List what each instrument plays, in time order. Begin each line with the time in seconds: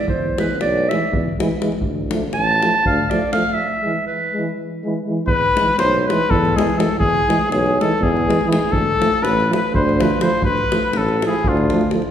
0.08 tuba E2, clarinet C5, davul low
0.37 euphonium E3 G#3, clarinet B4, davul high
0.51 davul high
0.60 tuba B1, clarinet D5, davul high
0.89 euphonium E3 G#3, clarinet E5, davul high
1.12 tuba E2, davul low
1.39 euphonium E3 G#3, davul high
1.51 davul high
1.61 euphonium E3 G#3, davul high
1.72 davul high
1.81 tuba D2, davul low
2.10 euphonium F3 A3, davul high
2.33 tuba A1, clarinet A5, davul high
2.62 euphonium F3 A3, davul high
2.84 tuba D2, clarinet F5, davul low
3.10 euphonium F3 A3, clarinet D5, davul high
3.33 euphonium F3 A3, clarinet F5, davul high
3.43 davul high
3.54 clarinet E5
3.82 euphonium E3 G#3
4.07 clarinet B4
4.33 euphonium G#3
4.38 euphonium E3
4.84 euphonium E3 G#3
5.06 euphonium E3 G#3
5.25 tuba E2, cornet B4, davul low
5.55 euphonium E3 G#3, davul high
5.68 davul high
5.78 tuba B1, cornet C5, davul high
5.94 davul high
6.00 cornet C5
6.08 euphonium E3 G#3, cornet B4, davul high
6.29 tuba E2, cornet A4, davul low
6.45 davul high
6.55 euphonium E3 G#3, cornet G#4, davul high
6.70 davul high
6.77 euphonium E3 G#3, cornet A4, davul high
6.99 tuba E2, cornet G#4, davul low
7.27 euphonium E3 G#3, davul high
7.41 davul high
7.50 tuba B1, cornet G#4, davul high
7.66 davul high
7.80 euphonium E3 G#3, cornet A4, davul high
8.00 tuba E2, cornet G#4, davul low
8.17 davul high
8.28 euphonium E3 G#3, davul high
8.41 davul high
8.47 euphonium E3 G#3
8.51 cornet G#4, davul high
8.70 tuba D2, cornet A4, davul low
8.99 euphonium F3 A3, davul high
9.13 davul high
9.21 tuba A1, cornet B4, davul high
9.40 davul high
9.50 euphonium F3 A3, cornet B4, davul high
9.73 tuba D2, cornet C5, davul low
9.89 davul high
9.99 euphonium F3 A3, cornet B4, davul high
10.10 davul high
10.20 euphonium F3 A3, cornet C5, davul high
10.42 tuba D2, cornet B4, davul low
10.58 davul high
10.71 euphonium F3 A3, davul high
10.83 davul high
10.93 tuba A1, cornet A4, davul high
11.09 davul high
11.22 euphonium F3 A3, davul high
11.27 clarinet E4, cornet G#4
11.33 davul high
11.44 tuba D2, clarinet D4, cornet F4, davul low
11.57 davul high
11.70 euphonium F3 A3, davul high
11.81 davul high
11.91 euphonium F3 A3, davul high
12.02 davul high